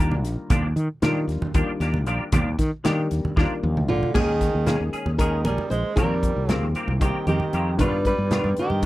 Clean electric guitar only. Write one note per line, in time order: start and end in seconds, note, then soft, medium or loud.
0.00 0.15 A#3 soft
0.00 0.15 D4 soft
0.00 0.14 G4 soft
0.50 0.66 F3 medium
0.50 0.66 A#3 medium
0.50 0.66 D4 loud
0.50 0.66 G4 loud
1.02 1.18 F3 medium
1.02 1.18 A#3 medium
1.02 1.19 D4 medium
1.02 1.19 G4 medium
1.55 1.70 F3 medium
1.55 1.70 A#3 medium
1.55 1.71 D4 medium
1.55 1.71 G4 medium
1.81 1.97 A#3 soft
1.81 1.97 D4 soft
1.81 1.96 G4 medium
2.07 2.22 F3 medium
2.07 2.22 A#3 medium
2.07 2.23 D4 medium
2.07 2.23 G4 medium
2.32 2.48 F3 medium
2.32 2.48 A#3 medium
2.32 2.48 D4 medium
2.32 2.49 G4 loud
2.84 3.00 F3 medium
2.84 3.00 A#3 medium
2.84 3.00 D4 medium
2.84 3.01 G4 medium
3.36 3.52 F3 medium
3.36 3.52 A#3 medium
3.36 3.53 D4 medium
3.36 3.53 G4 medium
4.14 4.30 A#3 medium
4.14 4.30 C#4 medium
4.14 4.31 G#4 medium
4.67 4.82 A#3 medium
4.67 4.83 C#4 medium
4.67 4.83 G#4 medium
4.93 5.09 C#4 soft
4.93 5.09 G#4 medium
5.20 5.35 A#3 medium
5.20 5.35 C#4 medium
5.20 5.35 G#4 medium
5.45 5.61 C#4 soft
5.45 5.61 G#4 soft
5.97 6.13 D#3 medium
5.97 6.13 A#3 medium
5.97 6.13 C4 medium
5.97 6.13 G4 medium
6.49 6.65 D#3 soft
6.49 6.65 A#3 medium
6.49 6.65 C4 medium
6.49 6.65 G4 medium
6.76 6.92 A#3 soft
6.76 6.91 C4 medium
6.76 6.91 G4 medium
7.01 7.17 D#3 medium
7.01 7.17 A#3 medium
7.01 7.17 C4 medium
7.01 7.17 G4 medium
7.27 7.44 A#3 soft
7.27 7.43 C4 soft
7.27 7.43 G4 soft
7.53 7.69 D#3 medium
7.53 7.69 A#3 medium
7.53 7.69 C4 medium
7.53 7.69 G4 medium
7.80 7.95 D#3 medium
7.80 7.95 B3 medium
7.80 7.95 D4 medium
7.80 7.96 F4 medium
8.31 8.47 D#3 soft
8.31 8.47 B3 soft
8.31 8.48 D4 medium
8.31 8.48 F4 medium